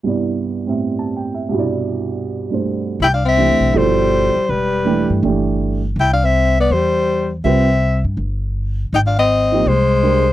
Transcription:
0.03 upright piano C2 G2 B3
0.07 upright piano E4 D5
0.66 upright piano A2 C4 G4 E5
0.99 upright piano A5
1.17 upright piano G5
1.34 upright piano E5
1.49 upright piano C2 G2
1.54 upright piano B2 E4
1.59 upright piano D5
2.50 upright piano G2 A3 D4 C5
3.00 upright bass C2, tenor saxophone E4, soprano saxophone G5
3.14 tenor saxophone D4, soprano saxophone F5
3.25 tenor saxophone C4, soprano saxophone E5
3.37 upright piano E3 A3 D4 G4
3.49 upright bass D2
3.60 upright bass B1
3.73 upright bass G1, upright piano B2 F3 E4 A4, tenor saxophone G3
3.78 soprano saxophone C5
4.35 muted upright bass stroke
4.49 upright bass E1, tenor saxophone G3, soprano saxophone B4
4.85 upright piano E3 A3 D4 G4
5.10 upright bass G2
5.23 upright bass G1, upright piano E3 A3 D4 G4
5.96 upright bass C2
6.00 tenor saxophone E4, soprano saxophone G5
6.13 tenor saxophone D4, soprano saxophone F5
6.24 tenor saxophone C4, soprano saxophone E5
6.60 tenor saxophone B3, soprano saxophone D5
6.70 upright bass E2, tenor saxophone G3, soprano saxophone C5
7.44 upright bass C2, upright piano G3 C4 F4 B4, tenor saxophone C4, soprano saxophone E5
8.04 upright bass G2
8.17 upright bass G1
8.93 upright bass G#1, tenor saxophone D#4, soprano saxophone G5
9.06 tenor saxophone D4, soprano saxophone F5
9.19 tenor saxophone C4, soprano saxophone D#5
9.52 upright piano F3 A#3 D#4 G4
9.66 upright bass C2, tenor saxophone G#3, soprano saxophone C5
10.03 upright piano G#3 D4 G4 A#4

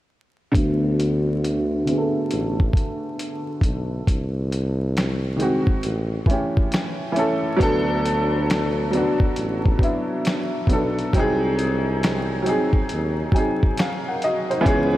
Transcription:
0.52 tuba D2, upright piano D3 A3, kick, closed hi-hat
0.56 upright piano B3 F#4
1.00 closed hi-hat
1.45 closed hi-hat
1.85 upright piano D3 A3, closed hi-hat
1.89 upright piano B3 G#4
1.98 upright piano A4
2.31 tuba A1, closed hi-hat
2.60 kick
2.73 kick, closed hi-hat
3.19 closed hi-hat
3.61 tuba B1, kick, closed hi-hat
4.07 tuba C2, kick, closed hi-hat
4.52 closed hi-hat
4.97 finger snap, snare, closed hi-hat
5.37 upright piano D#3 G#3, closed hi-hat
5.41 upright piano C4 F#4
5.67 kick
5.83 tuba A1, closed hi-hat
6.26 upright piano E3 A3, kick, closed hi-hat
6.31 upright piano C#4 G4
6.57 kick
6.72 finger snap, snare, closed hi-hat
7.12 upright piano E3 A3, closed hi-hat
7.16 upright piano C#4 A4
7.56 upright piano F#3 B3 D4, kick
7.61 tuba D2, upright piano A4, closed hi-hat
8.05 closed hi-hat
8.50 finger snap, snare, closed hi-hat
8.91 upright piano F#3 B3 D4, closed hi-hat
8.97 upright piano F#4
9.20 kick
9.36 tuba A1, closed hi-hat
9.65 kick
9.77 upright piano F#3 B3, kick
9.82 upright piano D4 E4, closed hi-hat
10.25 finger snap, snare, closed hi-hat
10.67 tuba B1, upright piano F#3 B3, kick, closed hi-hat
10.71 upright piano D4 A4
10.99 closed hi-hat
11.13 tuba C2, upright piano F#3 C4, kick, closed hi-hat
11.17 upright piano D#4 G#4
11.59 closed hi-hat
12.03 finger snap, snare, closed hi-hat
12.42 upright piano F#3 C4, closed hi-hat
12.47 upright piano D#4 G#4
12.73 kick
12.89 tuba D#2, closed hi-hat
13.32 upright piano F#3 C4 D#4 G#5, kick
13.36 upright piano G#4, closed hi-hat
13.63 kick
13.78 upright piano F5, finger snap, snare, closed hi-hat
14.08 upright piano A#4 F#5
14.22 upright piano F#4 D#5, closed hi-hat
14.50 upright piano D#4 C5, closed hi-hat
14.61 upright piano E3 B3
14.65 tuba C#2, upright piano C#4 G#4, kick, closed hi-hat

